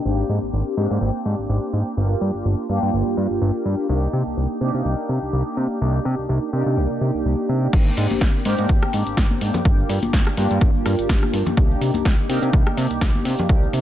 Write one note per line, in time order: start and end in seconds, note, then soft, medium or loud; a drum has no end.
0.05 0.24 G#1 medium
0.05 0.75 A#3 medium
0.05 0.75 C4 medium
0.05 0.75 D4 medium
0.05 0.75 G4 medium
0.29 0.39 G#2 loud
0.43 0.51 G#1 soft
0.53 0.63 G#1 medium
0.77 0.87 G#2 loud
0.77 1.94 A#3 medium
0.77 1.95 C4 medium
0.77 1.95 D4 medium
0.77 1.95 G4 medium
0.91 0.99 G#2 medium
1.01 1.11 G#1 medium
1.25 1.35 G#2 medium
1.39 1.47 G#1 soft
1.49 1.59 G#1 medium
1.73 1.83 G#2 medium
1.97 2.16 G1 loud
1.97 2.66 A#3 medium
1.97 2.67 D4 medium
1.97 2.67 F4 medium
1.97 2.67 G4 medium
2.21 2.31 G2 loud
2.35 2.43 G1 soft
2.45 2.55 G1 medium
2.69 2.79 G2 loud
2.69 3.86 A#3 medium
2.69 3.87 D4 medium
2.69 3.87 F4 medium
2.69 3.87 G4 loud
2.83 2.91 G2 medium
2.94 3.03 G1 medium
3.07 3.15 G2 soft
3.17 3.27 G2 medium
3.31 3.39 G1 soft
3.41 3.51 G1 medium
3.65 3.75 G2 medium
3.89 4.08 C2 loud
3.89 4.59 A#3 medium
3.89 4.59 D4 medium
3.89 4.59 D#4 medium
3.89 4.59 G4 medium
4.13 4.23 C3 loud
4.27 4.35 C2 soft
4.37 4.47 C2 medium
4.61 4.71 C3 loud
4.61 5.78 A#3 medium
4.61 5.79 D4 medium
4.61 5.79 D#4 medium
4.61 5.79 G4 loud
4.74 4.82 C3 medium
4.85 4.95 C2 medium
5.09 5.19 C3 medium
5.22 5.31 C2 soft
5.33 5.43 C2 medium
5.57 5.67 C3 medium
5.80 6.00 C2 loud
5.80 6.50 A#3 medium
5.80 6.51 D4 medium
5.80 6.51 D#4 medium
5.80 6.51 G4 medium
6.05 6.15 C3 loud
6.19 6.27 C2 soft
6.29 6.39 C2 medium
6.53 6.63 C3 medium
6.53 7.70 A#3 medium
6.53 7.71 D4 medium
6.53 7.71 D#4 medium
6.53 7.71 G4 loud
6.66 6.78 C3 medium
6.77 6.87 C2 medium
6.90 6.99 C3 soft
7.01 7.11 C3 loud
7.14 7.23 C2 soft
7.25 7.35 C2 medium
7.49 7.68 C3 loud
7.72 7.92 G#1 loud
7.72 8.42 A#3 medium
7.72 8.43 C4 medium
7.72 kick loud
7.72 closed hi-hat medium
7.72 crash loud
7.72 shaker medium
7.86 shaker soft
7.97 8.07 G#2 loud
7.97 open hi-hat loud
8.10 8.19 G#1 soft
8.10 closed hi-hat medium
8.10 high conga medium
8.10 shaker medium
8.21 8.31 G#1 medium
8.21 kick loud
8.21 snare loud
8.21 closed hi-hat medium
8.21 shaker medium
8.34 shaker soft
8.45 8.55 G#2 loud
8.45 9.62 A#3 medium
8.45 9.63 C4 medium
8.45 9.63 D4 medium
8.45 9.63 G4 loud
8.45 open hi-hat loud
8.59 8.67 G#2 medium
8.59 closed hi-hat medium
8.59 shaker medium
8.69 8.79 G#1 medium
8.69 kick loud
8.69 closed hi-hat medium
8.69 high conga medium
8.69 shaker medium
8.82 cross-stick medium
8.82 shaker soft
8.93 9.03 G#2 medium
8.93 open hi-hat loud
9.07 9.15 G#1 soft
9.07 closed hi-hat medium
9.07 shaker medium
9.17 9.27 G#1 medium
9.17 kick loud
9.17 snare loud
9.17 closed hi-hat medium
9.17 shaker medium
9.31 high conga loud
9.31 shaker soft
9.41 9.51 G#2 medium
9.41 open hi-hat loud
9.54 closed hi-hat medium
9.54 low conga loud
9.54 shaker medium
9.65 9.84 G1 loud
9.65 10.35 G4 medium
9.65 kick loud
9.65 closed hi-hat medium
9.65 shaker medium
9.78 shaker soft
9.89 9.99 G2 loud
9.89 open hi-hat loud
10.03 10.11 G1 soft
10.03 closed hi-hat medium
10.03 high conga loud
10.03 shaker medium
10.13 10.23 G1 medium
10.13 kick loud
10.13 snare loud
10.13 closed hi-hat medium
10.13 shaker medium
10.27 cross-stick medium
10.27 shaker soft
10.37 10.47 G2 medium
10.37 11.54 A#3 medium
10.37 11.55 D4 medium
10.37 11.55 F4 medium
10.37 11.55 G4 loud
10.37 open hi-hat loud
10.50 10.59 G2 medium
10.50 closed hi-hat medium
10.50 shaker medium
10.61 10.71 G1 medium
10.61 kick loud
10.61 closed hi-hat medium
10.61 high conga medium
10.61 shaker medium
10.74 10.83 G2 soft
10.74 shaker soft
10.86 10.95 G2 medium
10.86 cross-stick medium
10.86 open hi-hat loud
10.99 11.07 G1 soft
10.99 closed hi-hat medium
10.99 shaker medium
11.09 11.19 G1 medium
11.09 kick loud
11.09 snare loud
11.09 closed hi-hat medium
11.09 shaker medium
11.22 cross-stick medium
11.22 high conga medium
11.22 shaker soft
11.33 11.43 G2 medium
11.33 open hi-hat loud
11.46 closed hi-hat medium
11.46 low conga loud
11.46 shaker medium
11.57 11.76 C2 loud
11.57 12.27 D4 medium
11.57 12.27 D#4 medium
11.57 kick loud
11.57 closed hi-hat medium
11.57 shaker medium
11.70 shaker soft
11.81 11.91 C3 loud
11.81 open hi-hat loud
11.94 12.03 C2 soft
11.94 closed hi-hat medium
11.94 high conga loud
11.94 shaker medium
12.05 12.15 C2 medium
12.05 kick loud
12.05 snare loud
12.05 closed hi-hat medium
12.05 shaker medium
12.18 shaker soft
12.29 12.39 C3 loud
12.29 13.46 A#3 loud
12.29 13.47 D4 medium
12.29 13.47 D#4 medium
12.29 13.47 G4 loud
12.29 open hi-hat loud
12.42 12.50 C3 medium
12.42 closed hi-hat soft
12.42 shaker medium
12.53 12.63 C2 medium
12.53 kick loud
12.53 closed hi-hat medium
12.53 high conga medium
12.53 shaker medium
12.66 cross-stick medium
12.66 shaker soft
12.77 12.87 C3 medium
12.77 open hi-hat loud
12.90 12.99 C2 soft
12.90 closed hi-hat medium
12.90 shaker medium
13.01 13.11 C2 medium
13.01 kick loud
13.01 snare loud
13.01 closed hi-hat medium
13.01 shaker medium
13.15 high conga loud
13.15 shaker soft
13.25 13.35 C3 medium
13.25 open hi-hat loud
13.39 closed hi-hat medium
13.39 low conga loud
13.39 shaker medium
13.48 13.68 C2 loud
13.48 13.81 A#3 medium
13.48 13.81 D4 medium
13.48 13.81 D#4 medium
13.48 13.81 G4 medium
13.48 kick loud
13.48 closed hi-hat medium
13.48 shaker medium
13.63 shaker soft
13.73 13.81 C3 loud
13.73 open hi-hat loud